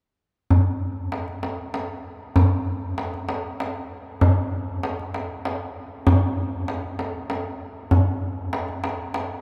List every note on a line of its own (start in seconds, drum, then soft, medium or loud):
0.50 tombak dum medium
1.12 tombak tek soft
1.28 tombak ka soft
1.43 tombak tek medium
1.74 tombak tek medium
2.36 tombak dum medium
2.98 tombak tek medium
3.14 tombak ka soft
3.29 tombak tek medium
3.60 tombak tek medium
4.21 tombak dum medium
4.83 tombak tek medium
4.99 tombak ka soft
5.14 tombak tek soft
5.45 tombak tek medium
6.07 tombak dum medium
6.68 tombak tek medium
6.99 tombak tek soft
7.30 tombak tek medium
7.91 tombak dum medium
8.53 tombak tek medium
8.68 tombak ka soft
8.84 tombak tek medium
9.14 tombak tek medium